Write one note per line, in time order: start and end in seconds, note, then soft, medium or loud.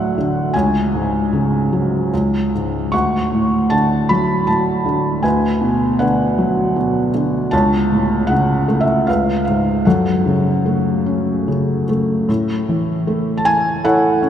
0.00 0.50 D2 medium
0.00 0.56 A2 soft
0.00 0.16 D3 soft
0.00 0.52 F#3 soft
0.00 0.56 A4 soft
0.00 0.56 E5 medium
0.00 0.55 F#5 medium
0.18 0.54 D3 soft
0.54 2.10 C#2 soft
0.54 2.50 C#5 soft
0.54 2.49 G#5 medium
0.94 2.10 G#2 soft
1.33 2.11 C#3 soft
1.73 2.12 F#3 soft
2.14 2.91 C#2 soft
2.55 2.93 G#2 soft
2.92 5.19 D2 soft
2.92 4.06 F#5 soft
2.92 3.73 C#6 medium
3.32 4.46 A2 soft
3.70 4.84 D3 soft
3.70 4.10 A5 medium
4.09 5.20 F#3 soft
4.09 4.48 B5 medium
4.47 5.21 A2 soft
4.47 5.25 A5 medium
4.86 5.22 D3 soft
5.23 7.49 D2 medium
5.23 5.98 B4 soft
5.23 6.02 G#5 medium
5.61 6.75 B2 soft
5.99 7.13 D3 soft
5.99 7.10 B4 soft
5.99 7.10 F#5 medium
6.38 7.50 F#3 soft
6.76 7.51 B2 soft
7.14 7.52 D3 soft
7.51 9.04 C#2 medium
7.51 8.65 C#5 medium
7.51 8.32 A5 medium
7.92 9.05 A2 soft
8.27 9.06 C#3 soft
8.27 8.82 F#5 medium
8.68 9.07 A3 soft
8.81 9.08 E5 medium
9.07 9.84 C#2 soft
9.07 9.83 B4 soft
9.07 9.43 F5 medium
9.45 9.85 G#2 soft
9.45 9.86 F5 soft
9.85 12.25 F#2 medium
9.85 11.84 A4 soft
9.85 11.84 F#5 soft
10.26 11.46 C#3 soft
10.66 11.87 A3 soft
11.06 12.26 C#4 soft
11.48 12.27 C#3 soft
11.89 12.28 A3 soft
12.29 14.29 A2 medium
12.69 14.19 E3 soft
13.07 14.29 A3 soft
13.37 13.45 A5 medium
13.45 13.85 G#5 medium
13.85 14.29 E4 medium
13.85 14.29 A4 medium
13.85 14.29 C#5 medium
13.85 14.29 F#5 medium
14.23 14.29 C#4 medium